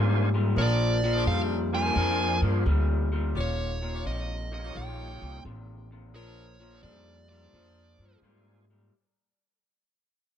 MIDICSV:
0, 0, Header, 1, 6, 480
1, 0, Start_track
1, 0, Tempo, 696864
1, 394, Time_signature, 4, 2, 24, 8
1, 7146, End_track
2, 0, Start_track
2, 0, Title_t, "Lead electric guitar"
2, 0, Program_c, 0, 29
2, 401, Note_on_c, 0, 74, 83
2, 851, Note_off_c, 0, 74, 0
2, 877, Note_on_c, 0, 77, 99
2, 963, Note_off_c, 0, 77, 0
2, 1202, Note_on_c, 0, 80, 93
2, 1652, Note_off_c, 0, 80, 0
2, 2345, Note_on_c, 0, 73, 77
2, 2783, Note_off_c, 0, 73, 0
2, 2801, Note_on_c, 0, 75, 84
2, 3119, Note_off_c, 0, 75, 0
2, 3127, Note_on_c, 0, 75, 89
2, 3284, Note_on_c, 0, 79, 102
2, 3286, Note_off_c, 0, 75, 0
2, 3733, Note_off_c, 0, 79, 0
2, 4239, Note_on_c, 0, 73, 93
2, 4701, Note_off_c, 0, 73, 0
2, 4703, Note_on_c, 0, 74, 107
2, 5015, Note_off_c, 0, 74, 0
2, 5023, Note_on_c, 0, 74, 91
2, 5642, Note_off_c, 0, 74, 0
2, 7146, End_track
3, 0, Start_track
3, 0, Title_t, "Saxophone section"
3, 0, Program_c, 1, 65
3, 385, Note_on_c, 1, 62, 78
3, 385, Note_on_c, 1, 70, 88
3, 386, Note_on_c, 1, 68, 68
3, 678, Note_off_c, 1, 62, 0
3, 678, Note_off_c, 1, 70, 0
3, 679, Note_off_c, 1, 68, 0
3, 786, Note_on_c, 1, 62, 77
3, 787, Note_on_c, 1, 72, 82
3, 788, Note_on_c, 1, 68, 68
3, 1095, Note_off_c, 1, 62, 0
3, 1095, Note_off_c, 1, 68, 0
3, 1095, Note_off_c, 1, 72, 0
3, 1270, Note_on_c, 1, 62, 80
3, 1272, Note_on_c, 1, 68, 74
3, 1275, Note_on_c, 1, 70, 87
3, 1817, Note_off_c, 1, 62, 0
3, 1818, Note_off_c, 1, 68, 0
3, 1819, Note_off_c, 1, 70, 0
3, 2310, Note_on_c, 1, 65, 80
3, 2312, Note_on_c, 1, 73, 91
3, 2313, Note_on_c, 1, 67, 75
3, 2601, Note_off_c, 1, 65, 0
3, 2602, Note_off_c, 1, 67, 0
3, 2602, Note_off_c, 1, 73, 0
3, 2710, Note_on_c, 1, 65, 77
3, 2713, Note_on_c, 1, 67, 71
3, 2714, Note_on_c, 1, 73, 83
3, 3017, Note_off_c, 1, 65, 0
3, 3018, Note_off_c, 1, 67, 0
3, 3019, Note_off_c, 1, 73, 0
3, 3191, Note_on_c, 1, 67, 76
3, 3192, Note_on_c, 1, 65, 85
3, 3195, Note_on_c, 1, 73, 92
3, 3738, Note_off_c, 1, 65, 0
3, 3738, Note_off_c, 1, 67, 0
3, 3740, Note_off_c, 1, 73, 0
3, 4228, Note_on_c, 1, 62, 82
3, 4230, Note_on_c, 1, 68, 72
3, 4231, Note_on_c, 1, 70, 84
3, 4520, Note_off_c, 1, 62, 0
3, 4522, Note_off_c, 1, 68, 0
3, 4522, Note_off_c, 1, 70, 0
3, 4629, Note_on_c, 1, 62, 74
3, 4629, Note_on_c, 1, 68, 63
3, 4631, Note_on_c, 1, 72, 81
3, 4937, Note_off_c, 1, 62, 0
3, 4937, Note_off_c, 1, 68, 0
3, 4938, Note_off_c, 1, 72, 0
3, 5107, Note_on_c, 1, 68, 78
3, 5107, Note_on_c, 1, 72, 84
3, 5108, Note_on_c, 1, 62, 77
3, 5656, Note_off_c, 1, 68, 0
3, 5656, Note_off_c, 1, 72, 0
3, 5657, Note_off_c, 1, 62, 0
3, 7146, End_track
4, 0, Start_track
4, 0, Title_t, "Tonewheel organ"
4, 0, Program_c, 2, 16
4, 0, Note_on_c, 2, 58, 63
4, 0, Note_on_c, 2, 62, 60
4, 0, Note_on_c, 2, 65, 58
4, 0, Note_on_c, 2, 72, 79
4, 0, Note_on_c, 2, 80, 62
4, 200, Note_off_c, 2, 58, 0
4, 201, Note_off_c, 2, 62, 0
4, 201, Note_off_c, 2, 80, 0
4, 202, Note_off_c, 2, 65, 0
4, 204, Note_off_c, 2, 72, 0
4, 1187, Note_on_c, 2, 58, 72
4, 1188, Note_on_c, 2, 62, 61
4, 1190, Note_on_c, 2, 65, 66
4, 1191, Note_on_c, 2, 80, 61
4, 1196, Note_on_c, 2, 72, 73
4, 1639, Note_off_c, 2, 58, 0
4, 1640, Note_off_c, 2, 62, 0
4, 1641, Note_off_c, 2, 65, 0
4, 1641, Note_off_c, 2, 80, 0
4, 1644, Note_off_c, 2, 72, 0
4, 1669, Note_on_c, 2, 58, 68
4, 1674, Note_on_c, 2, 62, 65
4, 1674, Note_on_c, 2, 65, 65
4, 1675, Note_on_c, 2, 72, 75
4, 1677, Note_on_c, 2, 68, 61
4, 1816, Note_off_c, 2, 58, 0
4, 1819, Note_off_c, 2, 62, 0
4, 1819, Note_off_c, 2, 65, 0
4, 1819, Note_off_c, 2, 72, 0
4, 1820, Note_off_c, 2, 68, 0
4, 3104, Note_on_c, 2, 58, 74
4, 3107, Note_on_c, 2, 63, 63
4, 3110, Note_on_c, 2, 65, 71
4, 3110, Note_on_c, 2, 67, 71
4, 3112, Note_on_c, 2, 73, 76
4, 3718, Note_off_c, 2, 58, 0
4, 3720, Note_off_c, 2, 63, 0
4, 3721, Note_off_c, 2, 65, 0
4, 3721, Note_off_c, 2, 67, 0
4, 3722, Note_off_c, 2, 73, 0
4, 5659, Note_on_c, 2, 58, 61
4, 5663, Note_on_c, 2, 62, 51
4, 5664, Note_on_c, 2, 65, 50
4, 5667, Note_on_c, 2, 80, 52
4, 5671, Note_on_c, 2, 72, 65
4, 5956, Note_off_c, 2, 58, 0
4, 5958, Note_off_c, 2, 62, 0
4, 5959, Note_off_c, 2, 65, 0
4, 5960, Note_off_c, 2, 80, 0
4, 5962, Note_off_c, 2, 72, 0
4, 7146, End_track
5, 0, Start_track
5, 0, Title_t, "Clean electric guitar"
5, 0, Program_c, 3, 27
5, 0, Note_on_c, 3, 46, 86
5, 0, Note_on_c, 3, 55, 91
5, 201, Note_off_c, 3, 46, 0
5, 203, Note_off_c, 3, 55, 0
5, 235, Note_on_c, 3, 46, 72
5, 239, Note_on_c, 3, 55, 92
5, 379, Note_off_c, 3, 46, 0
5, 381, Note_off_c, 3, 55, 0
5, 396, Note_on_c, 3, 46, 81
5, 399, Note_on_c, 3, 53, 101
5, 683, Note_off_c, 3, 46, 0
5, 685, Note_off_c, 3, 53, 0
5, 714, Note_on_c, 3, 46, 82
5, 717, Note_on_c, 3, 53, 83
5, 859, Note_off_c, 3, 46, 0
5, 860, Note_off_c, 3, 53, 0
5, 878, Note_on_c, 3, 46, 77
5, 880, Note_on_c, 3, 55, 81
5, 1165, Note_off_c, 3, 46, 0
5, 1166, Note_off_c, 3, 55, 0
5, 1197, Note_on_c, 3, 46, 72
5, 1202, Note_on_c, 3, 55, 78
5, 1340, Note_off_c, 3, 46, 0
5, 1342, Note_off_c, 3, 55, 0
5, 1352, Note_on_c, 3, 46, 75
5, 1358, Note_on_c, 3, 53, 98
5, 1642, Note_off_c, 3, 46, 0
5, 1645, Note_off_c, 3, 53, 0
5, 1670, Note_on_c, 3, 46, 73
5, 1675, Note_on_c, 3, 53, 81
5, 1817, Note_off_c, 3, 46, 0
5, 1819, Note_off_c, 3, 53, 0
5, 1831, Note_on_c, 3, 46, 92
5, 1835, Note_on_c, 3, 55, 103
5, 2121, Note_off_c, 3, 46, 0
5, 2123, Note_off_c, 3, 55, 0
5, 2149, Note_on_c, 3, 46, 77
5, 2152, Note_on_c, 3, 55, 76
5, 2296, Note_off_c, 3, 46, 0
5, 2298, Note_off_c, 3, 55, 0
5, 2307, Note_on_c, 3, 39, 76
5, 2310, Note_on_c, 3, 46, 85
5, 2600, Note_off_c, 3, 39, 0
5, 2601, Note_off_c, 3, 46, 0
5, 2628, Note_on_c, 3, 39, 76
5, 2633, Note_on_c, 3, 46, 82
5, 2776, Note_off_c, 3, 39, 0
5, 2778, Note_off_c, 3, 46, 0
5, 2787, Note_on_c, 3, 39, 78
5, 2792, Note_on_c, 3, 48, 81
5, 3080, Note_off_c, 3, 39, 0
5, 3082, Note_off_c, 3, 48, 0
5, 3114, Note_on_c, 3, 39, 70
5, 3119, Note_on_c, 3, 48, 75
5, 3259, Note_off_c, 3, 39, 0
5, 3262, Note_off_c, 3, 48, 0
5, 3270, Note_on_c, 3, 39, 87
5, 3274, Note_on_c, 3, 46, 88
5, 3561, Note_off_c, 3, 39, 0
5, 3563, Note_off_c, 3, 46, 0
5, 3593, Note_on_c, 3, 39, 76
5, 3596, Note_on_c, 3, 46, 87
5, 3739, Note_off_c, 3, 39, 0
5, 3740, Note_off_c, 3, 46, 0
5, 3756, Note_on_c, 3, 39, 90
5, 3758, Note_on_c, 3, 48, 91
5, 4044, Note_off_c, 3, 39, 0
5, 4045, Note_off_c, 3, 48, 0
5, 4071, Note_on_c, 3, 39, 75
5, 4076, Note_on_c, 3, 48, 79
5, 4218, Note_off_c, 3, 39, 0
5, 4220, Note_off_c, 3, 48, 0
5, 4229, Note_on_c, 3, 46, 74
5, 4231, Note_on_c, 3, 53, 97
5, 4521, Note_off_c, 3, 46, 0
5, 4522, Note_off_c, 3, 53, 0
5, 4544, Note_on_c, 3, 46, 76
5, 4548, Note_on_c, 3, 53, 78
5, 4694, Note_off_c, 3, 46, 0
5, 4697, Note_off_c, 3, 53, 0
5, 4707, Note_on_c, 3, 46, 78
5, 4711, Note_on_c, 3, 55, 84
5, 5000, Note_off_c, 3, 46, 0
5, 5002, Note_off_c, 3, 55, 0
5, 5027, Note_on_c, 3, 46, 76
5, 5032, Note_on_c, 3, 55, 85
5, 5176, Note_off_c, 3, 46, 0
5, 5178, Note_off_c, 3, 55, 0
5, 5193, Note_on_c, 3, 46, 80
5, 5197, Note_on_c, 3, 53, 84
5, 5483, Note_off_c, 3, 46, 0
5, 5485, Note_off_c, 3, 53, 0
5, 5514, Note_on_c, 3, 46, 72
5, 5517, Note_on_c, 3, 53, 80
5, 5660, Note_off_c, 3, 46, 0
5, 5661, Note_off_c, 3, 53, 0
5, 5672, Note_on_c, 3, 46, 86
5, 5675, Note_on_c, 3, 55, 94
5, 5962, Note_off_c, 3, 46, 0
5, 5964, Note_off_c, 3, 55, 0
5, 5993, Note_on_c, 3, 46, 72
5, 5997, Note_on_c, 3, 55, 83
5, 6139, Note_off_c, 3, 46, 0
5, 6141, Note_off_c, 3, 55, 0
5, 7146, End_track
6, 0, Start_track
6, 0, Title_t, "Upright bass"
6, 0, Program_c, 4, 32
6, 0, Note_on_c, 4, 44, 86
6, 365, Note_off_c, 4, 44, 0
6, 388, Note_on_c, 4, 34, 80
6, 844, Note_off_c, 4, 34, 0
6, 869, Note_on_c, 4, 41, 84
6, 1325, Note_off_c, 4, 41, 0
6, 1349, Note_on_c, 4, 41, 90
6, 1647, Note_off_c, 4, 41, 0
6, 1667, Note_on_c, 4, 43, 89
6, 1818, Note_off_c, 4, 43, 0
6, 1832, Note_on_c, 4, 38, 90
6, 2286, Note_off_c, 4, 38, 0
6, 2309, Note_on_c, 4, 27, 88
6, 2765, Note_off_c, 4, 27, 0
6, 2795, Note_on_c, 4, 34, 76
6, 3248, Note_off_c, 4, 34, 0
6, 3276, Note_on_c, 4, 34, 90
6, 3571, Note_off_c, 4, 34, 0
6, 3594, Note_on_c, 4, 36, 80
6, 3742, Note_off_c, 4, 36, 0
6, 3753, Note_on_c, 4, 33, 86
6, 4228, Note_off_c, 4, 33, 0
6, 4228, Note_on_c, 4, 34, 95
6, 4685, Note_off_c, 4, 34, 0
6, 4704, Note_on_c, 4, 41, 86
6, 5163, Note_off_c, 4, 41, 0
6, 5183, Note_on_c, 4, 41, 82
6, 5484, Note_off_c, 4, 41, 0
6, 5503, Note_on_c, 4, 43, 80
6, 5654, Note_off_c, 4, 43, 0
6, 5658, Note_on_c, 4, 44, 82
6, 6120, Note_off_c, 4, 44, 0
6, 7146, End_track
0, 0, End_of_file